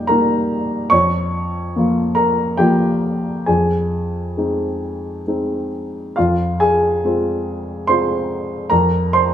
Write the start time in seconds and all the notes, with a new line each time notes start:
Already playing: F2 G3 A#3 D#4 G4 D#5 G5
0.07 G3 A#3 D#4 A#4 A#5
0.90 F2 C#5 C#6
1.76 F3 A#3 F4
2.15 A#4 A#5
2.57 F3 A#3 F4 G4 G5
3.46 F2 G#4 G#5
4.37 G#3 C4 D#4
5.27 G#3 C4 D#4
6.16 F2 F4 F5
6.60 G#4 G#5
7.04 G#3 C4 F4
7.87 G#3 C4 F4 C5 C6
8.70 F2 A#4 A#5
9.13 C5 C6